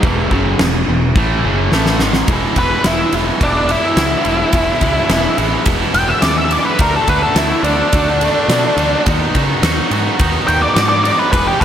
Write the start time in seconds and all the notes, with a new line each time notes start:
0.03 E1 E2 B2 E3, kick, crash
0.31 F#1 F#2 C#3 F#3, kick
0.59 E1 E2 B2, snare, crash
0.88 E1 E2 B2
1.15 A1 A2 E3 A3, kick, crash
1.44 F#1 F#2 C#3 F#3
1.71 A1 A2 E3 A3, snare
1.86 snare
1.99 G#1 G#2 D#3 G#3, snare
2.13 snare
2.28 E1 E2 B2 E3 G#3, kick, ride
2.32 B3 E4
2.56 E1 E2 B2 E3 G#3 B3 E4 B4, kick, ride
2.84 E1 E2 B2 E3 G#3 B3 E4, snare, ride
2.89 E4
3.12 E1 E2 B2 E3 G#3 B3 E4, ride
3.41 E1 E2 B2 E3 G#3 B3 D4 E4, kick, ride
3.69 E2 B2 E3 G#3 B3 E4, ride
3.96 C#2 E2 B2 E3 G#3 B3 E4, snare, ride
4.24 E1 E2 B2 E3 G#3 B3 E4, ride
4.53 E1 E2 B2 E3 G#3 B3 E4, kick, ride
4.81 C#2 E2 B2 E3 G#3 B3 E4, kick, ride
5.09 E1 E2 B2 E3 G#3 B3 E4, snare, ride
5.37 A1 E2 B2 E3 G#3 B3 E4, ride
5.65 E1 E2 B2 E3 G#3 B3 E4, kick, ride
5.93 E1 E2 B2 E3 G#3 B3 E4 G5, ride
6.08 E5
6.21 D#2 E2 B2 E3 G#3 B3 E4 D5, snare, ride
6.38 E5
6.50 E2 B2 E3 G#3 B3 E4 D5, ride
6.65 B4
6.79 D2 D3 A3 D4 F#4 A#4, kick, ride
6.96 A4
7.07 D2 D3 A3 D4 F#4 B4, kick, ride
7.23 A4
7.35 D2 D3 A3 D4 E4 F#4, snare, ride
7.63 D2 D3 A3 D4 F#4, ride
7.93 D2 D3 A3 D4 F#4, kick, ride
8.21 D3 A3 D4 F#4, ride
8.48 B2 D3 A3 D4 F#4, snare, ride
8.77 D2 D3 A3 D4, ride
8.81 F#4
9.06 D#2 D#3 B3 D#4 F#4, kick, ride
9.35 C#3 D#3 B3 D#4 F#4, kick, ride
9.62 D#2 D#3 B3 D#4 F#4, snare, ride
9.90 G#2 D#3 B3 D#4 F#4, ride
10.19 D#2 D#3 B3 D#4 F#4, kick, ride
10.48 D#2 D#3 B3 D#4 F#4 G5, ride
10.62 D5
10.74 G#2 D#3 B3 D#4 D5, snare, ride
10.79 F#4
10.89 D5
11.04 D#3 B3 D#4 F#4 D5, ride
11.19 B4
11.32 E1 E2 B2 E3 G#3 B3 B4, kick, ride
11.36 G#4
11.47 G4
11.60 E1 E2 B4, kick